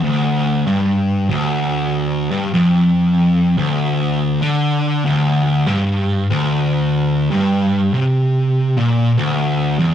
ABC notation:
X:1
M:4/4
L:1/8
Q:"Swing" 1/4=96
K:Dm
V:1 name="Distorted electric guitar" clef=bass
D,,2 G,,2 D,,3 G,, | F,,3 D,,3 D,2 | D,,2 G,,2 D,,3 G,,- | G,, C,3 B,, D,,2 E,, |]